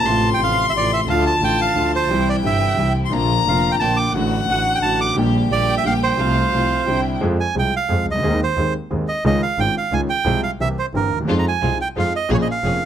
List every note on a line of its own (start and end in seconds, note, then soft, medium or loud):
0.00 0.37 C3 medium
0.00 0.30 A5 loud
0.05 0.38 A1 medium
0.05 0.38 A2 medium
0.05 0.38 F3 soft
0.05 0.39 A3 medium
0.05 0.39 A3 soft
0.05 0.39 C4 medium
0.05 0.39 F4 medium
0.05 1.10 C6 loud
0.34 0.41 G5 medium
0.38 0.72 A1 soft
0.38 0.72 A1 medium
0.38 0.72 A2 soft
0.38 0.71 C3 soft
0.38 0.72 F3 soft
0.38 0.72 A3 soft
0.38 0.73 A3 soft
0.38 0.73 C4 soft
0.38 0.73 F4 soft
0.44 0.66 F5 medium
0.69 1.06 C3 soft
0.69 0.72 E5 medium
0.74 1.06 A1 medium
0.74 1.07 A1 soft
0.74 1.07 A2 soft
0.74 1.06 F3 soft
0.74 1.07 A3 soft
0.74 1.07 C4 soft
0.74 1.07 F4 soft
0.74 1.08 F4 soft
0.74 0.91 D5 medium
0.93 1.00 E5 medium
1.07 1.40 D2 medium
1.07 1.41 D2 medium
1.07 1.39 D3 medium
1.07 1.40 F3 soft
1.07 1.40 A3 medium
1.07 1.41 A3 soft
1.07 1.40 D4 medium
1.07 1.41 F4 medium
1.07 1.25 F5 medium
1.07 2.03 A5 loud
1.11 1.42 F4 medium
1.27 1.42 A5 medium
1.40 1.74 A1 soft
1.40 1.74 A2 soft
1.40 1.73 D3 soft
1.40 1.74 F3 soft
1.40 1.75 A3 soft
1.40 1.75 D4 soft
1.40 1.75 F4 soft
1.40 1.60 G5 medium
1.44 1.75 F4 soft
1.61 1.92 F5 medium
1.74 2.08 D2 medium
1.74 2.08 D2 soft
1.74 2.08 D3 soft
1.74 2.08 F3 soft
1.74 2.09 A3 soft
1.74 2.09 D4 soft
1.74 2.09 F4 soft
1.95 2.29 C5 medium
2.03 2.12 A5 medium
2.09 2.42 C2 medium
2.09 2.43 C2 medium
2.09 2.10 C3 medium
2.09 2.41 C3 medium
2.09 2.42 E3 soft
2.09 2.43 G3 medium
2.09 2.43 C4 medium
2.09 2.43 E4 medium
2.09 2.95 G5 loud
2.13 2.44 E4 medium
2.29 2.36 D5 medium
2.43 2.76 G1 soft
2.43 2.77 G1 medium
2.43 2.77 G2 soft
2.43 2.74 C3 soft
2.43 2.76 E3 soft
2.43 2.77 G3 soft
2.43 2.77 C4 soft
2.43 2.77 E4 soft
2.43 2.93 E5 medium
2.76 3.10 C2 soft
2.76 3.11 C2 soft
2.76 2.77 C3 soft
2.76 3.10 C3 soft
2.76 3.10 E3 soft
2.76 3.11 G3 soft
2.76 3.11 C4 soft
2.76 3.11 E4 soft
2.80 3.11 E4 soft
3.06 3.43 D3 soft
3.06 3.15 C6 medium
3.11 3.44 A#1 medium
3.11 3.45 A#1 medium
3.11 3.44 A#2 medium
3.11 3.44 F3 soft
3.11 3.45 A#3 medium
3.11 3.45 A#3 soft
3.11 3.45 D4 medium
3.11 3.45 F4 medium
3.11 3.82 A#5 loud
3.45 3.79 F1 soft
3.45 3.79 F2 soft
3.45 3.77 D3 soft
3.45 3.79 F3 soft
3.45 3.79 A#3 soft
3.45 3.80 A#3 soft
3.45 3.79 D4 soft
3.45 3.79 F4 soft
3.45 3.80 F4 soft
3.45 3.71 F5 medium
3.72 3.76 G5 medium
3.79 4.13 A#1 soft
3.79 4.13 A#2 soft
3.79 4.12 D3 soft
3.79 4.13 F3 soft
3.79 4.13 A#3 soft
3.79 4.14 A#3 soft
3.79 4.13 D4 soft
3.79 4.13 F4 soft
3.79 4.14 F4 soft
3.79 4.16 G5 medium
3.79 3.98 A5 medium
3.97 4.13 D6 medium
4.13 4.47 A1 medium
4.13 4.47 A2 medium
4.13 4.45 D3 medium
4.13 4.47 F#3 soft
4.13 4.47 A3 medium
4.13 4.47 A3 soft
4.13 4.47 D4 medium
4.13 4.47 F#4 medium
4.13 5.16 F#5 medium
4.17 4.48 F#4 medium
4.47 4.81 A1 soft
4.47 4.81 A2 soft
4.47 4.80 D3 soft
4.47 4.81 F#3 soft
4.47 4.81 A3 soft
4.47 4.82 A3 soft
4.47 4.81 D4 soft
4.47 4.81 F#4 soft
4.47 4.82 F#4 soft
4.47 4.73 F#5 medium
4.75 4.78 G5 medium
4.81 5.15 A1 soft
4.81 5.15 A2 soft
4.81 5.13 D3 soft
4.81 5.15 F#3 soft
4.81 5.15 A3 soft
4.81 5.16 A3 soft
4.81 5.15 D4 soft
4.81 5.15 F#4 soft
4.81 5.16 F#4 soft
4.81 5.00 A5 medium
5.01 5.16 D6 medium
5.15 5.49 A#1 medium
5.15 5.49 A#2 medium
5.15 5.48 D3 medium
5.15 5.49 G3 medium
5.15 5.49 A#3 medium
5.15 5.49 A#3 soft
5.15 5.49 D4 medium
5.15 5.49 G4 medium
5.15 6.21 G5 medium
5.19 5.50 G4 medium
5.49 5.83 A#1 soft
5.49 5.83 A#1 medium
5.49 5.83 A#2 soft
5.49 5.82 D3 soft
5.49 5.83 G3 soft
5.49 5.83 A#3 soft
5.49 5.84 A#3 soft
5.49 5.83 D4 soft
5.49 5.83 G4 soft
5.49 5.75 D5 medium
5.53 5.84 G4 soft
5.77 5.85 E5 medium
5.83 6.17 A#1 soft
5.83 6.17 A#1 medium
5.83 6.17 A#2 soft
5.83 6.16 D3 soft
5.83 6.17 G3 soft
5.83 6.17 A#3 soft
5.83 6.17 D4 soft
5.83 6.17 G4 soft
5.83 6.18 G4 soft
5.83 5.94 F5 medium
6.03 7.01 C5 medium
6.19 6.51 C2 medium
6.19 6.51 C3 medium
6.19 6.51 F3 soft
6.19 6.51 A3 medium
6.19 6.52 A3 soft
6.19 6.51 C4 medium
6.19 6.52 F4 medium
6.19 6.87 F5 medium
6.52 6.86 C2 medium
6.52 6.86 C2 soft
6.52 6.86 C3 soft
6.52 6.85 F3 soft
6.52 6.86 A3 soft
6.52 6.86 C4 soft
6.52 6.86 F4 soft
6.52 6.87 F4 soft
6.86 7.20 C2 soft
6.86 7.20 C3 soft
6.86 7.19 D3 soft
6.86 7.19 G3 soft
6.86 7.20 C4 soft
6.86 7.20 D4 soft
6.86 7.20 E4 soft
6.86 7.21 E4 soft
6.86 7.19 G5 medium
7.21 7.36 F2 medium
7.21 7.36 F3 medium
7.21 7.35 G#3 medium
7.21 7.36 C4 medium
7.21 7.36 G#4 medium
7.40 7.55 G#5 medium
7.55 7.70 C2 soft
7.55 7.70 C2 medium
7.55 7.69 C3 soft
7.55 7.69 F3 soft
7.55 7.69 G#3 soft
7.55 7.70 C4 soft
7.55 7.70 G#4 soft
7.55 7.74 G5 medium
7.76 8.06 F5 medium
7.89 8.03 F2 medium
7.89 8.04 F2 medium
7.89 8.03 F3 medium
7.89 8.04 G#3 soft
7.89 8.04 C4 soft
7.89 8.04 G#4 medium
8.07 8.15 C2 soft
8.07 8.23 C#2 soft
8.11 8.41 D#5 medium
8.15 8.19 C#2 medium
8.15 8.23 D2 medium
8.23 8.38 D#2 medium
8.23 8.38 D#3 medium
8.23 8.38 G#3 medium
8.23 8.38 C4 medium
8.23 8.38 G#4 medium
8.43 8.74 C5 medium
8.57 8.72 D#2 soft
8.57 8.72 D#2 medium
8.57 8.72 D#3 soft
8.57 8.72 G#3 soft
8.57 8.72 C4 soft
8.57 8.72 G#4 soft
8.90 9.05 D#2 medium
8.90 9.06 D#2 soft
8.90 9.05 D#3 soft
8.90 9.05 G#3 soft
8.90 9.05 C4 soft
8.90 9.05 G#4 soft
9.08 9.24 D#5 medium
9.24 9.39 C#2 medium
9.24 9.39 C#3 medium
9.24 9.39 D#3 medium
9.24 9.39 G#3 medium
9.24 9.39 C#4 medium
9.24 9.39 F4 medium
9.24 9.41 D#5 medium
9.43 9.60 F5 medium
9.58 9.73 G#1 medium
9.58 9.73 G#1 soft
9.58 9.73 G#2 soft
9.58 9.73 D#3 soft
9.58 9.73 G#3 soft
9.58 9.73 C#4 soft
9.58 9.73 F4 soft
9.58 9.75 G5 medium
9.78 9.94 F5 medium
9.92 10.06 C#2 medium
9.92 10.06 C#2 soft
9.92 10.06 C#3 medium
9.92 10.06 D#3 soft
9.92 10.06 G#3 soft
9.92 10.06 C#4 soft
9.92 10.06 F4 medium
9.92 10.01 G#5 medium
10.10 10.41 G5 medium
10.25 10.40 C2 medium
10.25 10.40 C3 medium
10.25 10.40 F3 medium
10.25 10.40 G#3 medium
10.25 10.40 C4 medium
10.25 10.40 G#4 medium
10.43 10.51 F5 medium
10.59 10.74 C2 medium
10.59 10.74 C2 soft
10.59 10.75 C3 soft
10.59 10.74 E3 soft
10.59 10.74 A#3 soft
10.59 10.74 C4 soft
10.59 10.75 G4 soft
10.59 10.68 E5 medium
10.79 10.86 C5 medium
10.94 11.08 G1 medium
10.94 11.08 G2 soft
10.94 11.08 E3 soft
10.94 11.08 A#3 soft
10.94 11.08 C4 soft
10.94 11.09 G4 soft
10.94 11.19 A#4 medium
11.11 11.27 D#2 soft
11.16 11.20 D2 soft
11.21 11.24 D#2 medium
11.25 11.28 E2 medium
11.25 11.42 F2 medium
11.25 11.42 F3 medium
11.25 11.42 G#3 medium
11.25 11.42 C4 medium
11.25 11.42 D#4 medium
11.25 11.43 G#4 medium
11.29 11.43 F4 medium
11.39 11.45 A#5 medium
11.48 11.78 G#5 medium
11.62 11.76 C2 medium
11.62 11.76 C2 soft
11.62 11.76 C3 soft
11.62 11.76 F3 soft
11.62 11.76 G#3 soft
11.62 11.76 C4 soft
11.62 11.76 D#4 soft
11.62 11.76 F4 soft
11.62 11.77 G#4 soft
11.81 11.88 G5 medium
11.96 12.10 F2 medium
11.96 12.10 F2 soft
11.96 12.10 F3 soft
11.96 12.10 G#3 soft
11.96 12.10 C4 soft
11.96 12.10 D#4 soft
11.96 12.11 F4 soft
11.96 12.10 G#4 soft
11.96 12.13 F5 medium
12.16 12.30 D#5 medium
12.29 12.44 A#1 medium
12.29 12.43 A#2 medium
12.29 12.43 F3 medium
12.29 12.44 A#3 medium
12.29 12.44 C#4 medium
12.29 12.44 G#4 medium
12.34 12.37 C#5 medium
12.42 12.48 D#5 medium
12.51 12.85 F5 medium
12.63 12.78 F1 soft
12.63 12.78 F1 medium
12.63 12.78 F2 soft
12.63 12.77 F3 soft
12.63 12.78 A#3 soft
12.63 12.78 C#4 soft
12.63 12.78 G#4 soft